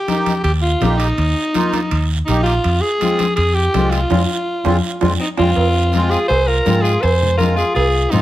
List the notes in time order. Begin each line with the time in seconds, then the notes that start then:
Already playing: G4
0.08 A#3 D#4 G4, high conga, high timbale, short guiro
0.26 high conga, high timbale, short guiro
0.43 D#2 G4, high timbale, long guiro
0.62 F4
0.80 A#1 A#3 D#4 G4, high conga, high timbale, low timbale, short guiro
0.98 D#4, high timbale, short guiro
1.18 D#2, high timbale, long guiro
1.54 A#3 D#4 F4, high conga, high timbale, short guiro
1.73 high conga, high timbale, short guiro
1.91 D#2, high timbale, long guiro
2.25 A#1 A#3 D#4 G4, high conga, high timbale, short guiro
2.43 F4, high timbale, short guiro
2.64 F2, high timbale, long guiro
2.81 G#4
3.00 G#3 C4 F4, high conga, high timbale, short guiro
3.19 high conga, high timbale, short guiro
3.36 F2 G#4, high timbale, long guiro
3.54 G4
3.74 C2 G#3 C4 F4, high conga, high timbale, low timbale, short guiro
3.91 F4, high timbale, short guiro
4.10 F2 G#3 C4 F4, high conga, high timbale, long guiro
4.64 F2 G#3 C4 F4, high conga, high timbale, long guiro
5.01 F2 G#3 C4 F4, high conga, high timbale, long guiro
5.20 C4 D#4
5.37 F2 G#3 C4 F4, high conga, high timbale, long guiro
5.56 F2, cowbell, long guiro
5.92 G#3 C4 F4, cowbell, high conga, short guiro
6.10 F4 G#4, short guiro
6.28 C2 G#4 C5, cowbell, long guiro
6.47 F4 A#4
6.66 G#2 G#3 C4 F4, cowbell, high conga, low timbale, short guiro
6.82 F4 G#4, short guiro
7.01 F2 G#4 C5, cowbell, long guiro
7.22 low conga
7.38 G#3 C4 F4 A#4, cowbell, high conga, short guiro
7.56 F4 G#4, short guiro
7.74 C2 F4 G#4, cowbell, long guiro
8.11 G#2 G#3 C4 D#4 F4, cowbell, high conga, low conga, short guiro